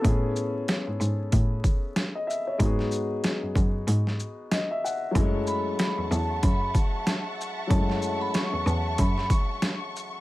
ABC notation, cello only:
X:1
M:4/4
L:1/16
Q:"Swing 16ths" 1/4=94
K:F#dor
V:1 name="Cello" clef=bass
A,,4 z G,, G,,2 A,,2 z6 | G,,4 z F,, F,,2 G,,2 z6 | F,,4 z E,, E,,2 F,,2 z6 | F,,4 z E,, E,,2 F,,2 z6 |]